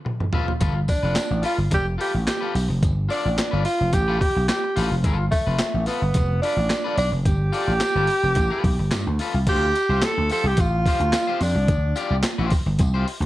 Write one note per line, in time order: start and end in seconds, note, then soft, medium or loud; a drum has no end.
0.05 muted clean electric guitar stroke soft
0.05 mid tom medium
0.20 muted clean electric guitar stroke soft
0.20 mid tom medium
0.33 0.51 F4 medium
0.33 0.47 A4 medium
0.33 0.46 B4 medium
0.33 floor tom loud
0.47 muted clean electric guitar stroke soft
0.47 floor tom medium
0.60 0.85 G1 loud
0.60 0.79 F4 medium
0.60 0.76 A4 medium
0.60 0.74 B4 medium
0.60 kick loud
0.60 closed hi-hat medium
0.60 tambourine soft
0.75 muted clean electric guitar stroke medium
0.88 1.41 D4 medium
0.88 muted clean electric guitar stroke soft
0.88 kick medium
0.88 open hi-hat medium
0.88 tambourine medium
1.03 1.15 F1 medium
1.03 1.15 F4 soft
1.03 1.15 A4 medium
1.03 1.16 B4 medium
1.16 muted clean electric guitar stroke soft
1.16 snare loud
1.16 clap medium
1.16 closed hi-hat medium
1.16 tambourine loud
1.31 1.42 A1 medium
1.42 1.58 F4 medium
1.42 1.58 F4 loud
1.42 1.58 A4 medium
1.42 1.56 B4 medium
1.42 open hi-hat medium
1.42 tambourine medium
1.58 1.70 G1 medium
1.58 muted clean electric guitar stroke soft
1.71 1.96 F1 medium
1.71 1.86 G4 loud
1.71 muted clean electric guitar stroke soft
1.71 kick medium
1.71 closed hi-hat medium
1.71 tambourine soft
1.98 2.14 F4 medium
1.98 2.13 G4 medium
1.98 2.13 A4 medium
1.98 2.12 B4 medium
1.98 open hi-hat medium
1.98 tambourine soft
2.13 2.26 A1 medium
2.13 muted clean electric guitar stroke medium
2.27 2.67 G4 medium
2.27 muted clean electric guitar stroke soft
2.27 snare loud
2.27 clap medium
2.27 closed hi-hat medium
2.27 tambourine medium
2.41 2.54 F4 medium
2.41 2.54 A4 medium
2.41 2.55 B4 medium
2.55 2.68 B1 medium
2.55 muted clean electric guitar stroke soft
2.55 open hi-hat medium
2.55 tambourine medium
2.69 2.81 F1 loud
2.69 muted clean electric guitar stroke soft
2.83 3.07 G1 loud
2.83 kick loud
2.83 closed hi-hat medium
2.83 tambourine soft
3.09 3.62 D4 medium
3.09 3.28 F4 medium
3.09 3.28 A4 medium
3.09 3.29 D5 medium
3.09 open hi-hat medium
3.09 tambourine medium
3.25 3.37 A1 medium
3.37 muted clean electric guitar stroke soft
3.37 snare loud
3.37 clap medium
3.37 closed hi-hat medium
3.37 tambourine medium
3.51 3.64 G1 medium
3.51 3.63 F4 medium
3.51 3.64 A4 medium
3.51 3.65 B4 medium
3.65 3.95 F4 loud
3.65 muted clean electric guitar stroke soft
3.65 open hi-hat medium
3.65 tambourine medium
3.79 3.92 F1 medium
3.79 muted clean electric guitar stroke soft
3.93 4.17 A1 medium
3.93 4.20 G4 loud
3.93 muted clean electric guitar stroke soft
3.93 kick medium
3.93 closed hi-hat medium
3.93 tambourine medium
4.08 4.20 F4 medium
4.08 4.21 A4 medium
4.08 4.21 B4 medium
4.20 4.47 G4 medium
4.20 muted clean electric guitar stroke soft
4.20 kick medium
4.20 open hi-hat medium
4.35 4.48 B1 medium
4.35 muted clean electric guitar stroke soft
4.48 4.88 G4 medium
4.48 muted clean electric guitar stroke soft
4.48 snare loud
4.48 clap medium
4.48 closed hi-hat medium
4.48 tambourine medium
4.64 muted clean electric guitar stroke soft
4.76 4.89 A1 medium
4.76 4.95 F4 medium
4.76 4.91 A4 medium
4.76 4.90 B4 medium
4.76 open hi-hat medium
4.76 tambourine medium
4.91 5.04 F1 loud
4.91 muted clean electric guitar stroke soft
5.04 5.28 G1 medium
5.04 5.25 F4 medium
5.04 5.19 A4 medium
5.04 5.17 B4 medium
5.04 kick loud
5.04 closed hi-hat medium
5.04 tambourine soft
5.18 muted clean electric guitar stroke medium
5.31 5.88 A3 loud
5.31 muted clean electric guitar stroke soft
5.31 kick medium
5.31 open hi-hat medium
5.31 tambourine medium
5.47 5.58 F1 medium
5.47 5.59 F4 soft
5.47 5.59 A4 medium
5.47 5.60 B4 medium
5.59 snare loud
5.59 clap medium
5.59 closed hi-hat medium
5.59 tambourine medium
5.74 5.86 A1 medium
5.86 6.41 B3 medium
5.86 6.02 F4 medium
5.86 6.02 A4 medium
5.86 6.01 B4 medium
5.86 open hi-hat medium
5.86 tambourine medium
6.02 6.13 G1 medium
6.02 muted clean electric guitar stroke medium
6.14 6.39 F1 loud
6.14 muted clean electric guitar stroke soft
6.14 kick medium
6.14 closed hi-hat medium
6.14 tambourine soft
6.42 6.94 D4 loud
6.42 6.58 F4 medium
6.42 6.57 A4 medium
6.42 6.56 B4 medium
6.42 open hi-hat medium
6.42 tambourine soft
6.57 6.68 A1 medium
6.57 muted clean electric guitar stroke soft
6.70 muted clean electric guitar stroke soft
6.70 snare loud
6.70 clap medium
6.70 closed hi-hat medium
6.70 tambourine medium
6.84 6.96 F4 medium
6.84 6.97 A4 medium
6.84 6.97 B4 medium
6.97 7.10 B1 loud
6.97 7.10 D4 loud
6.97 muted clean electric guitar stroke soft
6.97 open hi-hat medium
6.97 tambourine medium
7.12 7.24 F1 medium
7.12 muted clean electric guitar stroke soft
7.25 7.50 G1 loud
7.25 9.16 G4 loud
7.25 kick loud
7.25 closed hi-hat medium
7.25 tambourine soft
7.52 7.71 F4 loud
7.52 7.72 A4 loud
7.52 7.72 D5 loud
7.52 open hi-hat medium
7.52 tambourine medium
7.68 7.79 A1 medium
7.81 muted clean electric guitar stroke soft
7.81 snare loud
7.81 clap medium
7.81 closed hi-hat medium
7.81 tambourine medium
7.95 8.07 G1 medium
7.95 8.08 F4 medium
7.95 8.09 A4 medium
7.95 8.09 B4 medium
8.07 muted clean electric guitar stroke soft
8.07 open hi-hat medium
8.07 tambourine medium
8.23 8.35 F1 medium
8.23 muted clean electric guitar stroke medium
8.35 8.49 A1 loud
8.35 muted clean electric guitar stroke soft
8.35 kick loud
8.35 closed hi-hat medium
8.35 tambourine soft
8.50 8.62 F4 medium
8.50 8.63 A4 medium
8.50 8.64 B4 medium
8.63 8.77 B1 loud
8.63 muted clean electric guitar stroke soft
8.63 kick medium
8.63 open hi-hat medium
8.79 8.90 G1 medium
8.79 muted clean electric guitar stroke medium
8.91 9.05 G2 loud
8.91 muted clean electric guitar stroke soft
8.91 snare loud
8.91 clap medium
8.91 closed hi-hat medium
8.91 tambourine medium
9.07 9.18 D2 medium
9.07 muted clean electric guitar stroke soft
9.19 9.38 F4 medium
9.19 9.35 A4 medium
9.19 9.33 B4 medium
9.19 open hi-hat medium
9.19 tambourine medium
9.34 9.46 C2 medium
9.34 muted clean electric guitar stroke soft
9.47 9.71 D2 loud
9.47 9.66 F4 medium
9.47 10.06 G4 loud
9.47 9.63 G4 medium
9.47 9.62 C5 medium
9.47 kick loud
9.47 closed hi-hat medium
9.47 crash loud
9.47 tambourine soft
9.63 muted clean electric guitar stroke medium
9.75 muted clean electric guitar stroke soft
9.75 closed hi-hat medium
9.75 tambourine medium
9.89 10.01 C2 medium
9.89 10.02 F4 medium
9.89 10.02 G4 medium
9.89 10.03 C5 medium
10.02 10.31 A4 loud
10.02 muted clean electric guitar stroke soft
10.02 snare loud
10.02 clap medium
10.02 closed hi-hat medium
10.02 tambourine medium
10.18 10.29 D2 medium
10.30 10.45 F4 medium
10.30 10.46 G4 medium
10.30 10.49 A4 loud
10.30 10.45 C5 medium
10.30 open hi-hat medium
10.30 tambourine medium
10.44 10.56 C2 loud
10.44 10.61 G4 loud
10.44 muted clean electric guitar stroke soft
10.57 10.82 A1 medium
10.57 11.42 F4 loud
10.57 muted clean electric guitar stroke medium
10.57 kick medium
10.57 closed hi-hat medium
10.57 tambourine soft
10.86 11.01 F4 medium
10.86 11.01 G4 medium
10.86 11.00 C5 medium
10.86 kick medium
10.86 open hi-hat medium
10.86 tambourine soft
11.00 11.11 D2 medium
11.00 muted clean electric guitar stroke medium
11.00 closed hi-hat medium
11.13 muted clean electric guitar stroke soft
11.13 snare loud
11.13 clap medium
11.13 closed hi-hat medium
11.13 tambourine medium
11.27 11.39 F4 medium
11.27 11.40 G4 medium
11.27 11.40 C5 loud
11.40 11.54 F2 medium
11.40 12.21 D4 medium
11.40 muted clean electric guitar stroke soft
11.40 open hi-hat medium
11.40 tambourine medium
11.55 11.68 C2 medium
11.55 muted clean electric guitar stroke soft
11.68 11.93 D2 loud
11.68 kick loud
11.68 closed hi-hat medium
11.68 tambourine soft
11.96 12.14 F4 medium
11.96 12.15 G4 loud
11.96 12.15 D5 loud
11.96 closed hi-hat medium
11.96 tambourine medium
12.10 12.22 C2 medium
12.23 muted clean electric guitar stroke soft
12.23 snare loud
12.23 clap loud
12.23 closed hi-hat medium
12.23 tambourine medium
12.38 12.50 A1 medium
12.38 12.51 F4 medium
12.38 12.52 G4 medium
12.38 12.52 C5 medium
12.50 muted clean electric guitar stroke soft
12.50 kick loud
12.50 open hi-hat medium
12.50 tambourine medium
12.66 12.77 G1 loud
12.66 muted clean electric guitar stroke soft
12.79 13.03 C2 loud
12.79 muted clean electric guitar stroke soft
12.79 kick medium
12.79 closed hi-hat medium
12.79 tambourine soft
12.94 13.06 F4 medium
12.94 13.06 G4 medium
12.94 13.07 C5 medium
13.07 muted clean electric guitar stroke soft
13.07 open hi-hat medium
13.20 13.26 D2 medium
13.20 muted clean electric guitar stroke soft
13.20 closed hi-hat medium